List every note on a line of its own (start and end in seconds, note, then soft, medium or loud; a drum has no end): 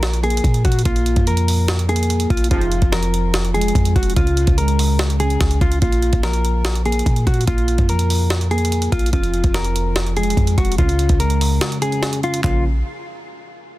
0.00 0.40 A#1 loud
0.00 0.23 A#2 medium
0.00 0.65 F3 medium
0.00 0.20 A#4 medium
0.00 snare loud
0.00 closed hi-hat loud
0.13 closed hi-hat medium
0.23 1.27 A#3 medium
0.23 0.62 G#4 medium
0.23 closed hi-hat soft
0.30 closed hi-hat medium
0.37 closed hi-hat medium
0.44 0.64 A#2 loud
0.44 kick loud
0.44 closed hi-hat medium
0.54 closed hi-hat medium
0.65 0.85 A#2 loud
0.65 0.81 F#4 medium
0.65 kick loud
0.65 closed hi-hat medium
0.72 closed hi-hat medium
0.79 closed hi-hat medium
0.85 1.15 A#1 loud
0.85 1.89 A#2 medium
0.85 1.24 F4 loud
0.85 kick loud
0.85 closed hi-hat medium
0.96 closed hi-hat medium
1.06 closed hi-hat medium
1.16 2.26 F2 loud
1.16 kick loud
1.16 closed hi-hat medium
1.27 2.30 F3 medium
1.27 1.85 A#4 medium
1.27 closed hi-hat medium
1.37 closed hi-hat medium
1.48 open hi-hat medium
1.68 snare loud
1.68 closed hi-hat loud
1.79 closed hi-hat medium
1.89 2.51 A#3 medium
1.89 2.28 G#4 medium
1.89 closed hi-hat soft
1.96 closed hi-hat medium
2.03 closed hi-hat medium
2.10 closed hi-hat medium
2.20 closed hi-hat medium
2.30 2.50 A#1 loud
2.30 2.47 F4 medium
2.30 kick loud
2.30 closed hi-hat medium
2.37 closed hi-hat medium
2.44 closed hi-hat medium
2.51 2.81 F1 loud
2.51 3.54 F2 medium
2.51 2.81 G#2 loud
2.51 2.81 C3 medium
2.51 2.81 F3 loud
2.51 2.90 F4 medium
2.51 kick loud
2.51 closed hi-hat medium
2.61 closed hi-hat medium
2.72 closed hi-hat medium
2.82 3.71 F1 loud
2.82 kick loud
2.82 closed hi-hat soft
2.92 3.96 F3 medium
2.92 3.51 A#4 medium
2.92 snare loud
2.92 closed hi-hat medium
3.03 closed hi-hat medium
3.14 closed hi-hat medium
3.34 snare loud
3.34 closed hi-hat loud
3.45 closed hi-hat medium
3.54 4.17 G#3 medium
3.54 3.93 G#4 medium
3.54 closed hi-hat soft
3.61 closed hi-hat medium
3.68 closed hi-hat medium
3.75 3.95 F2 loud
3.75 kick loud
3.75 closed hi-hat medium
3.85 closed hi-hat medium
3.96 4.16 F1 loud
3.96 4.12 F#4 medium
3.96 kick loud
3.96 closed hi-hat medium
4.03 closed hi-hat medium
4.10 closed hi-hat medium
4.16 4.46 C#2 loud
4.16 5.20 C#3 loud
4.16 4.55 F4 loud
4.16 kick loud
4.16 closed hi-hat medium
4.27 closed hi-hat medium
4.37 closed hi-hat medium
4.47 5.37 C#2 loud
4.47 kick loud
4.47 closed hi-hat medium
4.58 5.61 G#3 medium
4.58 5.16 A#4 medium
4.58 closed hi-hat medium
4.68 closed hi-hat medium
4.79 open hi-hat medium
4.99 snare loud
4.99 closed hi-hat loud
5.10 closed hi-hat medium
5.20 5.82 C#4 medium
5.20 5.59 G#4 medium
5.20 closed hi-hat medium
5.30 closed hi-hat soft
5.41 5.61 C#2 loud
5.41 kick medium
5.41 snare loud
5.41 closed hi-hat medium
5.51 closed hi-hat medium
5.61 5.81 C#2 loud
5.61 5.78 F4 medium
5.61 kick loud
5.61 closed hi-hat soft
5.72 closed hi-hat medium
5.82 6.12 A#1 loud
5.82 6.85 A#2 medium
5.82 6.21 F4 medium
5.82 kick loud
5.82 closed hi-hat medium
5.92 closed hi-hat medium
6.02 closed hi-hat medium
6.13 7.02 A#1 loud
6.13 kick loud
6.13 closed hi-hat soft
6.23 7.27 F3 medium
6.23 6.82 A#4 medium
6.23 snare loud
6.23 closed hi-hat medium
6.33 closed hi-hat medium
6.45 closed hi-hat medium
6.65 snare loud
6.65 closed hi-hat loud
6.75 closed hi-hat medium
6.85 7.89 A#3 medium
6.85 7.24 G#4 medium
6.85 closed hi-hat soft
6.92 closed hi-hat medium
6.99 closed hi-hat medium
7.06 7.26 A#2 loud
7.06 kick medium
7.06 closed hi-hat medium
7.16 closed hi-hat medium
7.27 7.47 A#2 loud
7.27 7.43 F#4 medium
7.27 kick loud
7.27 closed hi-hat medium
7.34 closed hi-hat medium
7.41 closed hi-hat medium
7.47 7.77 A#1 loud
7.47 8.51 A#2 medium
7.47 7.86 F4 loud
7.47 kick loud
7.47 closed hi-hat medium
7.58 closed hi-hat medium
7.68 closed hi-hat medium
7.78 8.88 F2 loud
7.78 kick loud
7.78 closed hi-hat soft
7.89 8.93 F3 medium
7.89 8.48 A#4 medium
7.89 closed hi-hat medium
7.99 closed hi-hat medium
8.10 open hi-hat medium
8.30 snare loud
8.30 closed hi-hat loud
8.41 closed hi-hat medium
8.51 9.13 A#3 medium
8.51 8.90 G#4 medium
8.51 closed hi-hat soft
8.58 closed hi-hat medium
8.65 closed hi-hat medium
8.72 closed hi-hat medium
8.82 closed hi-hat medium
8.92 9.12 A#1 loud
8.92 9.09 F4 medium
8.92 kick loud
8.92 closed hi-hat medium
8.99 closed hi-hat medium
9.06 closed hi-hat medium
9.13 9.43 F1 loud
9.13 10.16 F2 medium
9.13 9.52 F4 medium
9.13 kick loud
9.13 closed hi-hat medium
9.23 closed hi-hat medium
9.34 closed hi-hat medium
9.44 10.33 F1 loud
9.44 kick loud
9.44 closed hi-hat soft
9.54 10.58 F3 medium
9.54 10.13 A#4 medium
9.54 snare loud
9.54 closed hi-hat medium
9.64 closed hi-hat medium
9.76 closed hi-hat medium
9.96 snare loud
9.96 closed hi-hat loud
10.07 closed hi-hat medium
10.17 10.79 G#3 medium
10.17 10.56 G#4 medium
10.17 closed hi-hat soft
10.23 closed hi-hat medium
10.30 closed hi-hat medium
10.37 10.57 F2 loud
10.37 kick medium
10.37 closed hi-hat medium
10.47 closed hi-hat medium
10.58 10.78 F1 loud
10.58 10.74 F#4 medium
10.58 kick loud
10.58 closed hi-hat medium
10.65 closed hi-hat medium
10.72 closed hi-hat medium
10.78 11.08 C#2 loud
10.78 11.82 C#3 loud
10.78 11.17 F4 medium
10.78 kick loud
10.78 closed hi-hat medium
10.89 closed hi-hat medium
10.99 closed hi-hat medium
11.09 11.59 C#2 loud
11.09 kick loud
11.09 closed hi-hat soft
11.20 12.24 G#3 medium
11.20 11.78 A#4 medium
11.20 closed hi-hat medium
11.30 closed hi-hat medium
11.41 open hi-hat medium
11.61 snare loud
11.61 closed hi-hat loud
11.72 closed hi-hat medium
11.82 12.43 C#4 medium
11.82 12.21 G#4 medium
11.82 closed hi-hat medium
11.92 closed hi-hat soft
12.03 snare loud
12.03 closed hi-hat medium
12.13 closed hi-hat medium
12.23 12.40 F4 medium
12.23 closed hi-hat soft
12.34 closed hi-hat medium
12.44 12.83 A#1 loud
12.44 12.63 C#3 medium
12.44 12.63 F3 medium
12.44 12.63 A#3 medium
12.44 12.63 C#4 loud
12.44 12.63 F4 medium
12.44 kick loud
12.44 clap medium